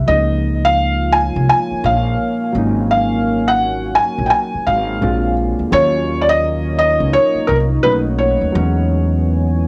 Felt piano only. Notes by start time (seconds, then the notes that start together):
0.08 D#5
0.65 F5
1.13 G#5
1.49 G#5
1.85 F5
2.91 F5
3.48 F#5
3.95 G#5
4.26 G5
4.30 G#5
4.67 F5
5.73 C#5
6.22 D5
6.29 D#5
6.79 D#5
7.13 C#5
7.47 A#4
7.83 B4
8.18 C#5